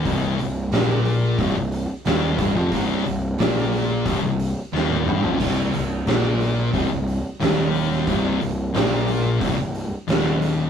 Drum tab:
CC |----------------|----------------|x---------------|----------------|
HH |o-o-o-o-o-o-o-o-|o-o-o-o-o-o-----|o-o-o-o-o-o-o-o-|o-o-o-o-o-o-o-o-|
SD |----o-------o---|----o-o-----o---|----o-------o--o|----o-------o---|
T1 |----------------|-------------o--|----------------|----------------|
T2 |----------------|--------------o-|----------------|----------------|
FT |----------------|---------------o|----------------|----------------|
BD |o-------o-----o-|o-------o-------|o-------o-------|o-------o-------|